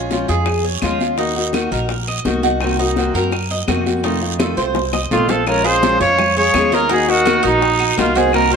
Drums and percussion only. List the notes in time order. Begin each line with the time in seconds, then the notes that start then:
0.11 high bongo, high conga, short guiro
0.28 high bongo, high conga, short guiro
0.46 high bongo, high conga, long guiro, claves
0.64 high conga
0.82 high bongo, low bongo, high conga, short guiro, claves
1.00 high bongo, high conga, short guiro
1.18 high bongo, high conga, long guiro
1.36 high bongo, high conga
1.53 high bongo, high conga, short guiro, claves
1.71 high bongo, short guiro
1.89 high bongo, high conga, long guiro
2.08 high conga, claves
2.25 high bongo, low bongo, high conga, short guiro
2.43 high bongo, high conga, short guiro
2.61 high bongo, high conga, long guiro, claves
2.79 high bongo, high conga
2.96 high bongo, high conga, short guiro
3.15 high bongo, high conga, short guiro
3.32 high bongo, high conga, long guiro, claves
3.50 high conga
3.68 high bongo, low bongo, high conga, short guiro, claves
3.86 high bongo, high conga, short guiro
4.04 high bongo, high conga, long guiro
4.22 high bongo, high conga
4.39 high bongo, high conga, short guiro, claves
4.57 high bongo, short guiro
4.75 high bongo, high conga, long guiro
4.93 high bongo, high conga, claves
5.11 low bongo, high conga, short guiro
5.29 low bongo, high conga, short guiro
5.47 high bongo, high conga, long guiro, claves
5.65 high conga
5.83 high bongo, high conga, short guiro
6.01 high conga, short guiro
6.19 high bongo, high conga, low conga, long guiro, claves
6.37 high conga, low conga
6.54 high bongo, low bongo, high conga, short guiro, claves
6.73 high conga, short guiro
6.89 high bongo, high conga, long guiro
7.09 high bongo, high conga
7.26 high bongo, high conga, short guiro, claves
7.44 high bongo, high conga, short guiro
7.62 high bongo, high conga, long guiro
7.80 high bongo, high conga, claves
7.98 high bongo, low bongo, high conga, short guiro
8.16 high conga, short guiro
8.33 high bongo, long guiro, claves
8.52 high conga